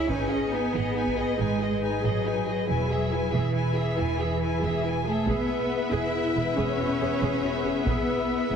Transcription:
0.08 0.63 G#1 soft
0.08 0.52 C#4 medium
0.08 0.29 D#4 soft
0.08 5.02 G#4 soft
0.08 5.02 B4 soft
0.08 0.29 B4 soft
0.08 0.29 G#5 soft
0.08 taiko soft
0.30 0.52 G#4 soft
0.30 0.52 D#5 soft
0.52 1.38 B3 medium
0.52 0.74 D#4 soft
0.52 0.74 B4 soft
0.52 0.74 G#5 soft
0.73 1.28 G#1 medium
0.73 0.95 G#4 soft
0.73 0.95 D#5 soft
0.95 1.16 D#4 soft
0.95 1.15 B4 soft
0.95 1.15 G#5 soft
1.06 taiko soft
1.16 1.38 G#4 soft
1.16 1.39 G#4 soft
1.16 1.38 D#5 soft
1.37 1.93 G#1 soft
1.37 2.02 G#3 medium
1.37 1.60 D#4 soft
1.37 1.59 B4 soft
1.37 1.60 G#5 soft
1.60 1.82 G#4 soft
1.60 1.82 D#5 soft
1.81 2.02 D#4 soft
1.81 2.01 B4 soft
1.81 2.02 G#5 soft
2.03 2.58 G#1 soft
2.03 2.67 F#3 medium
2.03 2.25 G#4 soft
2.03 2.25 D#5 soft
2.23 2.47 D#4 soft
2.23 2.45 B4 soft
2.23 2.47 G#5 soft
2.47 2.68 G#4 soft
2.47 2.68 D#5 soft
2.68 3.23 E1 soft
2.68 3.31 F#3 medium
2.68 2.88 E4 soft
2.68 2.88 B4 soft
2.68 2.88 G#5 soft
2.89 3.11 G#4 soft
2.89 3.11 E5 soft
3.11 3.33 E4 soft
3.11 3.33 B4 soft
3.11 3.33 G#5 soft
3.32 3.87 E1 soft
3.32 5.05 E3 soft
3.32 3.54 G#4 soft
3.32 3.54 E5 soft
3.54 3.74 E4 soft
3.54 3.74 B4 soft
3.54 3.74 G#5 soft
3.75 3.98 G#4 soft
3.75 3.97 E5 soft
3.97 4.52 E1 soft
3.97 4.19 E4 soft
3.97 4.19 B4 soft
3.97 4.19 G#5 soft
4.18 4.40 G#4 soft
4.18 4.41 G#4 soft
4.18 4.41 E5 soft
4.40 4.61 E4 soft
4.40 4.60 B4 soft
4.40 4.61 G#5 soft
4.62 5.17 E1 soft
4.62 4.84 G#4 soft
4.62 4.84 E5 soft
4.84 5.06 E4 soft
4.84 5.06 B4 soft
4.84 5.06 G#5 soft
5.05 5.26 A3 soft
5.05 5.26 G#4 soft
5.05 5.28 G#4 soft
5.05 5.26 A4 soft
5.05 5.28 E5 soft
5.26 5.34 E1 soft
5.26 5.92 B3 soft
5.26 8.56 B3 soft
5.26 8.56 E4 medium
5.26 5.47 G#4 soft
5.26 8.56 G#4 soft
5.26 5.92 B4 soft
5.26 8.56 B4 soft
5.26 8.56 E5 soft
5.26 taiko medium
5.92 6.00 E1 soft
5.92 6.57 E4 medium
5.92 6.12 G#4 medium
5.92 6.57 E5 medium
6.36 6.44 E1 soft
6.36 6.44 G#4 soft
6.56 6.66 E1 medium
6.56 7.86 C#4 medium
6.56 6.77 G#4 medium
6.56 7.86 C#5 medium
6.79 6.88 E1 soft
6.79 6.87 F#4 soft
7.01 7.09 E1 soft
7.01 7.09 G#4 soft
7.22 7.30 E1 medium
7.22 7.42 G#4 medium
7.43 7.51 E1 soft
7.43 7.52 F#4 soft
7.65 7.73 E1 soft
7.65 7.73 G#4 soft
7.86 7.95 E1 medium
7.86 8.56 B3 medium
7.86 8.07 G#4 soft
7.86 8.56 B4 soft
7.86 taiko medium
8.51 8.56 E1 medium
8.51 8.56 G#4 medium

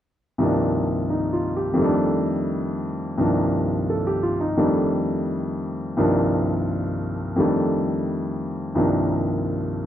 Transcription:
0.38 1.78 C2 soft
0.38 1.79 G2 soft
0.38 1.74 D#3 soft
0.38 1.79 F3 soft
0.38 1.80 A#3 soft
0.43 1.81 D4 soft
1.10 1.53 D#4 soft
1.33 1.69 F4 soft
1.56 1.92 G4 soft
1.74 3.16 F2 soft
1.74 3.17 D#3 soft
1.79 3.18 G3 soft
1.79 3.20 A3 soft
1.84 3.21 D4 medium
3.18 4.58 C2 soft
3.18 4.58 G2 soft
3.18 4.56 D#3 soft
3.18 4.59 F3 soft
3.18 4.60 A#3 soft
3.23 4.58 D4 soft
3.90 4.22 A4 soft
4.07 4.36 G4 soft
4.23 4.44 F4 soft
4.40 4.65 D#4 soft
4.57 5.97 F2 soft
4.57 5.96 D#3 soft
4.57 5.97 G3 soft
4.57 5.98 A3 soft
4.57 5.97 D4 medium
5.97 7.37 C2 soft
5.97 7.37 G2 soft
5.97 7.36 D#3 soft
5.97 7.37 F3 soft
5.97 7.37 A#3 soft
5.97 7.38 D4 medium
7.36 8.76 F2 soft
7.36 8.74 D#3 soft
7.36 8.77 G3 soft
7.36 8.78 A3 soft
7.41 8.75 D4 soft
8.75 9.86 C2 soft
8.75 9.86 G2 soft
8.75 9.86 D#3 soft
8.75 9.86 F3 soft
8.75 9.86 A#3 soft
8.75 9.86 D4 soft

